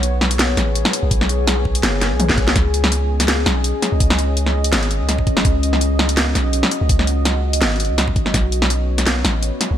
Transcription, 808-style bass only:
0, 0, Header, 1, 2, 480
1, 0, Start_track
1, 0, Tempo, 361446
1, 1477, Time_signature, 4, 2, 24, 8
1, 12987, End_track
2, 0, Start_track
2, 0, Title_t, "808-style bass"
2, 0, Program_c, 0, 38
2, 0, Note_on_c, 0, 35, 99
2, 742, Note_off_c, 0, 35, 0
2, 758, Note_on_c, 0, 33, 81
2, 1110, Note_off_c, 0, 33, 0
2, 1365, Note_on_c, 0, 35, 94
2, 1467, Note_off_c, 0, 35, 0
2, 1474, Note_on_c, 0, 35, 102
2, 2421, Note_off_c, 0, 35, 0
2, 2434, Note_on_c, 0, 30, 97
2, 2808, Note_on_c, 0, 35, 89
2, 2827, Note_off_c, 0, 30, 0
2, 3143, Note_off_c, 0, 35, 0
2, 3154, Note_on_c, 0, 35, 78
2, 3378, Note_off_c, 0, 35, 0
2, 3396, Note_on_c, 0, 37, 99
2, 4582, Note_off_c, 0, 37, 0
2, 4600, Note_on_c, 0, 35, 85
2, 4952, Note_off_c, 0, 35, 0
2, 5209, Note_on_c, 0, 37, 91
2, 5309, Note_off_c, 0, 37, 0
2, 5318, Note_on_c, 0, 37, 101
2, 6263, Note_off_c, 0, 37, 0
2, 6279, Note_on_c, 0, 32, 93
2, 6649, Note_on_c, 0, 37, 87
2, 6669, Note_off_c, 0, 32, 0
2, 6996, Note_on_c, 0, 32, 84
2, 7016, Note_off_c, 0, 37, 0
2, 7218, Note_off_c, 0, 32, 0
2, 7235, Note_on_c, 0, 37, 104
2, 8422, Note_off_c, 0, 37, 0
2, 8438, Note_on_c, 0, 35, 82
2, 8790, Note_off_c, 0, 35, 0
2, 9048, Note_on_c, 0, 37, 94
2, 9148, Note_off_c, 0, 37, 0
2, 9155, Note_on_c, 0, 37, 98
2, 10102, Note_off_c, 0, 37, 0
2, 10117, Note_on_c, 0, 32, 95
2, 10487, Note_on_c, 0, 37, 86
2, 10507, Note_off_c, 0, 32, 0
2, 10835, Note_on_c, 0, 32, 81
2, 10855, Note_off_c, 0, 37, 0
2, 11058, Note_off_c, 0, 32, 0
2, 11077, Note_on_c, 0, 35, 100
2, 12262, Note_off_c, 0, 35, 0
2, 12281, Note_on_c, 0, 33, 83
2, 12632, Note_off_c, 0, 33, 0
2, 12894, Note_on_c, 0, 35, 92
2, 12987, Note_off_c, 0, 35, 0
2, 12987, End_track
0, 0, End_of_file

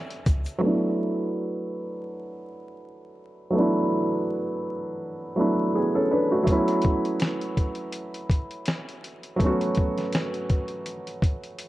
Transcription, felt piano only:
0, 0, Header, 1, 2, 480
1, 0, Start_track
1, 0, Tempo, 731707
1, 407, Time_signature, 4, 2, 24, 8
1, 7665, End_track
2, 0, Start_track
2, 0, Title_t, "Felt piano"
2, 0, Program_c, 0, 0
2, 0, Control_c, 0, 64, 127
2, 0, Note_on_c, 0, 54, 53
2, 0, Note_on_c, 0, 57, 54
2, 0, Note_on_c, 0, 62, 63
2, 0, Note_on_c, 0, 76, 78
2, 374, Note_off_c, 0, 54, 0
2, 383, Note_off_c, 0, 57, 0
2, 384, Note_on_c, 0, 54, 73
2, 385, Note_off_c, 0, 62, 0
2, 398, Note_on_c, 0, 57, 62
2, 414, Note_on_c, 0, 59, 65
2, 415, Control_c, 0, 64, 0
2, 421, Note_off_c, 0, 76, 0
2, 430, Note_on_c, 0, 62, 61
2, 444, Note_on_c, 0, 64, 71
2, 531, Control_c, 0, 64, 127
2, 2289, Note_off_c, 0, 54, 0
2, 2296, Note_off_c, 0, 57, 0
2, 2299, Note_on_c, 0, 54, 69
2, 2304, Note_off_c, 0, 59, 0
2, 2312, Note_off_c, 0, 62, 0
2, 2315, Note_on_c, 0, 57, 61
2, 2319, Note_off_c, 0, 64, 0
2, 2332, Note_on_c, 0, 59, 63
2, 2347, Note_on_c, 0, 62, 66
2, 2364, Note_on_c, 0, 64, 73
2, 3489, Note_off_c, 0, 54, 0
2, 3497, Note_off_c, 0, 57, 0
2, 3506, Note_off_c, 0, 59, 0
2, 3513, Note_off_c, 0, 62, 0
2, 3516, Note_on_c, 0, 54, 56
2, 3522, Note_off_c, 0, 64, 0
2, 3524, Note_on_c, 0, 57, 51
2, 3533, Note_on_c, 0, 59, 47
2, 3538, Note_on_c, 0, 62, 53
2, 3547, Note_on_c, 0, 64, 56
2, 3765, Note_off_c, 0, 57, 0
2, 3766, Note_off_c, 0, 59, 0
2, 3773, Note_off_c, 0, 62, 0
2, 3773, Note_on_c, 0, 68, 53
2, 3776, Note_on_c, 0, 59, 48
2, 3777, Note_off_c, 0, 64, 0
2, 3897, Note_off_c, 0, 68, 0
2, 3899, Note_off_c, 0, 59, 0
2, 3905, Note_on_c, 0, 69, 67
2, 3908, Note_on_c, 0, 61, 53
2, 4004, Note_off_c, 0, 69, 0
2, 4006, Note_off_c, 0, 61, 0
2, 4009, Note_on_c, 0, 71, 63
2, 4014, Note_on_c, 0, 62, 54
2, 4135, Note_off_c, 0, 71, 0
2, 4138, Note_off_c, 0, 62, 0
2, 4144, Note_on_c, 0, 66, 59
2, 4147, Note_on_c, 0, 57, 48
2, 4210, Note_off_c, 0, 54, 0
2, 4220, Note_on_c, 0, 54, 73
2, 4222, Note_off_c, 0, 57, 0
2, 4232, Note_on_c, 0, 57, 63
2, 4250, Note_on_c, 0, 59, 60
2, 4257, Control_c, 0, 64, 0
2, 4265, Note_on_c, 0, 61, 68
2, 4281, Note_on_c, 0, 64, 84
2, 4361, Control_c, 0, 64, 127
2, 4371, Note_off_c, 0, 66, 0
2, 6127, Note_off_c, 0, 54, 0
2, 6133, Note_off_c, 0, 57, 0
2, 6142, Note_off_c, 0, 59, 0
2, 6142, Note_on_c, 0, 54, 68
2, 6150, Note_off_c, 0, 61, 0
2, 6157, Note_on_c, 0, 57, 61
2, 6158, Note_off_c, 0, 64, 0
2, 6175, Note_on_c, 0, 59, 61
2, 6192, Note_on_c, 0, 61, 60
2, 6206, Note_on_c, 0, 66, 78
2, 7665, Note_off_c, 0, 54, 0
2, 7665, Note_off_c, 0, 57, 0
2, 7665, Note_off_c, 0, 59, 0
2, 7665, Note_off_c, 0, 61, 0
2, 7665, Note_off_c, 0, 66, 0
2, 7665, End_track
0, 0, End_of_file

